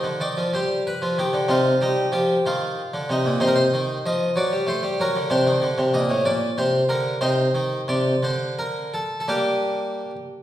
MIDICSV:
0, 0, Header, 1, 2, 480
1, 0, Start_track
1, 0, Tempo, 638978
1, 1127, Time_signature, 6, 3, 24, 8
1, 5439, Tempo, 681818
1, 7683, End_track
2, 0, Start_track
2, 0, Title_t, "Harpsichord"
2, 0, Program_c, 0, 6
2, 0, Note_on_c, 0, 63, 34
2, 0, Note_on_c, 0, 72, 70
2, 25, Note_on_c, 0, 50, 49
2, 87, Note_off_c, 0, 72, 0
2, 147, Note_off_c, 0, 50, 0
2, 153, Note_on_c, 0, 51, 46
2, 158, Note_on_c, 0, 74, 64
2, 272, Note_off_c, 0, 51, 0
2, 280, Note_on_c, 0, 53, 48
2, 365, Note_off_c, 0, 63, 0
2, 395, Note_off_c, 0, 53, 0
2, 400, Note_off_c, 0, 74, 0
2, 402, Note_on_c, 0, 55, 49
2, 412, Note_on_c, 0, 72, 67
2, 612, Note_off_c, 0, 72, 0
2, 654, Note_on_c, 0, 71, 67
2, 662, Note_off_c, 0, 55, 0
2, 766, Note_on_c, 0, 53, 47
2, 880, Note_off_c, 0, 53, 0
2, 889, Note_on_c, 0, 51, 45
2, 890, Note_off_c, 0, 71, 0
2, 894, Note_on_c, 0, 67, 65
2, 1002, Note_off_c, 0, 51, 0
2, 1002, Note_on_c, 0, 50, 47
2, 1116, Note_on_c, 0, 48, 56
2, 1116, Note_on_c, 0, 63, 34
2, 1118, Note_off_c, 0, 50, 0
2, 1127, Note_on_c, 0, 65, 68
2, 1132, Note_off_c, 0, 67, 0
2, 1293, Note_off_c, 0, 48, 0
2, 1360, Note_on_c, 0, 55, 46
2, 1361, Note_off_c, 0, 63, 0
2, 1368, Note_off_c, 0, 65, 0
2, 1370, Note_on_c, 0, 63, 66
2, 1536, Note_off_c, 0, 55, 0
2, 1573, Note_off_c, 0, 63, 0
2, 1593, Note_on_c, 0, 53, 47
2, 1599, Note_on_c, 0, 67, 63
2, 1770, Note_off_c, 0, 53, 0
2, 1842, Note_off_c, 0, 67, 0
2, 1846, Note_on_c, 0, 51, 52
2, 1852, Note_on_c, 0, 65, 68
2, 2104, Note_off_c, 0, 51, 0
2, 2205, Note_on_c, 0, 50, 52
2, 2256, Note_off_c, 0, 65, 0
2, 2319, Note_off_c, 0, 50, 0
2, 2325, Note_on_c, 0, 48, 51
2, 2338, Note_on_c, 0, 63, 67
2, 2438, Note_off_c, 0, 48, 0
2, 2449, Note_on_c, 0, 46, 51
2, 2548, Note_off_c, 0, 63, 0
2, 2557, Note_on_c, 0, 48, 58
2, 2557, Note_on_c, 0, 63, 36
2, 2560, Note_off_c, 0, 46, 0
2, 2563, Note_on_c, 0, 72, 82
2, 2610, Note_on_c, 0, 70, 68
2, 2614, Note_off_c, 0, 72, 0
2, 2663, Note_off_c, 0, 70, 0
2, 2672, Note_on_c, 0, 72, 82
2, 2731, Note_off_c, 0, 48, 0
2, 2806, Note_on_c, 0, 51, 52
2, 2976, Note_off_c, 0, 51, 0
2, 3044, Note_off_c, 0, 72, 0
2, 3048, Note_on_c, 0, 53, 50
2, 3052, Note_on_c, 0, 75, 74
2, 3217, Note_off_c, 0, 53, 0
2, 3246, Note_off_c, 0, 63, 0
2, 3274, Note_on_c, 0, 54, 54
2, 3283, Note_on_c, 0, 74, 73
2, 3285, Note_off_c, 0, 75, 0
2, 3390, Note_off_c, 0, 54, 0
2, 3398, Note_on_c, 0, 55, 50
2, 3485, Note_off_c, 0, 74, 0
2, 3506, Note_on_c, 0, 57, 53
2, 3512, Note_off_c, 0, 55, 0
2, 3518, Note_on_c, 0, 72, 74
2, 3626, Note_off_c, 0, 57, 0
2, 3629, Note_on_c, 0, 55, 50
2, 3748, Note_off_c, 0, 55, 0
2, 3756, Note_on_c, 0, 54, 54
2, 3759, Note_off_c, 0, 72, 0
2, 3764, Note_on_c, 0, 70, 78
2, 3872, Note_off_c, 0, 54, 0
2, 3873, Note_on_c, 0, 50, 53
2, 3965, Note_off_c, 0, 70, 0
2, 3982, Note_on_c, 0, 48, 61
2, 3983, Note_on_c, 0, 62, 37
2, 3989, Note_off_c, 0, 50, 0
2, 3990, Note_on_c, 0, 72, 84
2, 4103, Note_off_c, 0, 48, 0
2, 4105, Note_on_c, 0, 51, 55
2, 4221, Note_on_c, 0, 50, 52
2, 4224, Note_off_c, 0, 51, 0
2, 4341, Note_off_c, 0, 50, 0
2, 4341, Note_on_c, 0, 48, 56
2, 4459, Note_on_c, 0, 46, 49
2, 4461, Note_off_c, 0, 48, 0
2, 4464, Note_on_c, 0, 75, 77
2, 4471, Note_off_c, 0, 72, 0
2, 4580, Note_on_c, 0, 45, 53
2, 4581, Note_off_c, 0, 46, 0
2, 4672, Note_off_c, 0, 75, 0
2, 4677, Note_off_c, 0, 62, 0
2, 4698, Note_on_c, 0, 74, 64
2, 4699, Note_on_c, 0, 46, 51
2, 4701, Note_off_c, 0, 45, 0
2, 4876, Note_off_c, 0, 46, 0
2, 4942, Note_on_c, 0, 48, 53
2, 4945, Note_off_c, 0, 74, 0
2, 4945, Note_on_c, 0, 72, 78
2, 5119, Note_off_c, 0, 48, 0
2, 5175, Note_on_c, 0, 50, 50
2, 5178, Note_on_c, 0, 70, 74
2, 5189, Note_off_c, 0, 72, 0
2, 5358, Note_off_c, 0, 50, 0
2, 5392, Note_off_c, 0, 70, 0
2, 5417, Note_on_c, 0, 48, 57
2, 5419, Note_on_c, 0, 63, 36
2, 5420, Note_on_c, 0, 72, 79
2, 5592, Note_off_c, 0, 48, 0
2, 5654, Note_on_c, 0, 51, 51
2, 5825, Note_off_c, 0, 72, 0
2, 5829, Note_off_c, 0, 51, 0
2, 5890, Note_on_c, 0, 48, 46
2, 5896, Note_on_c, 0, 74, 66
2, 6067, Note_off_c, 0, 48, 0
2, 6106, Note_off_c, 0, 63, 0
2, 6133, Note_on_c, 0, 50, 45
2, 6139, Note_off_c, 0, 74, 0
2, 6144, Note_on_c, 0, 72, 69
2, 6349, Note_off_c, 0, 72, 0
2, 6387, Note_on_c, 0, 70, 65
2, 6629, Note_off_c, 0, 70, 0
2, 6634, Note_on_c, 0, 69, 65
2, 6662, Note_off_c, 0, 50, 0
2, 6813, Note_off_c, 0, 69, 0
2, 6821, Note_on_c, 0, 69, 43
2, 6873, Note_off_c, 0, 69, 0
2, 6875, Note_on_c, 0, 55, 44
2, 6876, Note_on_c, 0, 58, 34
2, 6879, Note_on_c, 0, 62, 35
2, 6882, Note_on_c, 0, 67, 64
2, 7382, Note_off_c, 0, 55, 0
2, 7455, Note_off_c, 0, 58, 0
2, 7457, Note_off_c, 0, 62, 0
2, 7494, Note_off_c, 0, 67, 0
2, 7683, End_track
0, 0, End_of_file